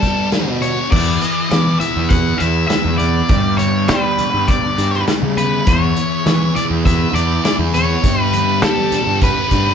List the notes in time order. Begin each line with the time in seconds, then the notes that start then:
Already playing: G3 B3 D4 G4 A4
0.02 G4, kick, closed hi-hat
0.32 D4, snare, closed hi-hat
0.47 B2
0.62 B3 C#5, closed hi-hat
0.92 E2 E3 B3 E4 G#4 D5, kick, crash
1.22 closed hi-hat
1.51 E3 B3, snare, closed hi-hat
1.66 high conga
1.80 E4 E5, closed hi-hat, high conga, low conga
1.96 E2
2.09 B3 F#5, kick, closed hi-hat
2.38 E2 E4 E5, closed hi-hat
2.68 E3 E5, snare, closed hi-hat
2.85 E2, high conga
2.98 B3 D5, closed hi-hat, low conga
3.29 G2 G3 G4 D5, kick, closed hi-hat
3.58 C#5, closed hi-hat
3.88 G3 B3 B4, snare, closed hi-hat
4.18 D4, closed hi-hat, high conga, low conga
4.34 G2
4.48 B3 D5, kick, closed hi-hat
4.77 G2 D4, closed hi-hat
4.93 snare
5.07 G3, snare, closed hi-hat
5.22 C#3, high conga
5.37 B3 B4, closed hi-hat, low conga
5.67 E2 E3 B3 E4 G#4 C#5, kick, closed hi-hat
5.96 closed hi-hat
6.25 E3 B3, snare, closed hi-hat
6.40 high conga
6.55 E4 D5, closed hi-hat, high conga, low conga
6.70 E2
6.85 B3 E5, kick, closed hi-hat
7.13 E2 E4 D5, closed hi-hat
7.44 E3 D5, snare, closed hi-hat
7.58 E2, high conga
7.74 B3 C#5, closed hi-hat, low conga
8.02 G2 G3 G4 D5, kick, closed hi-hat
8.21 B4
8.33 B4, closed hi-hat, high conga
8.62 G3 B3 A4, snare, closed hi-hat
8.77 high conga
8.92 D4, closed hi-hat, high conga, low conga
9.06 G2
9.21 B3 B4, kick, closed hi-hat
9.51 G2 D4, kick, closed hi-hat
9.66 snare, low conga